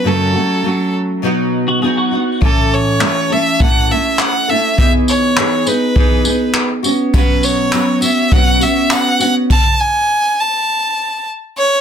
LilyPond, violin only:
\new Staff \with { instrumentName = "Violin" } { \time 4/4 \key b \mixolydian \tempo 4 = 102 a'4. r2 r8 | a'8 cis''4 e''8 fis''8 e''8 fis''8 e''8 | e''8 cis''4 b'4. r4 | b'8 cis''4 e''8 fis''8 e''8 fis''8 fis''8 |
a''8 gis''4 a''4. r8 cis''8 | }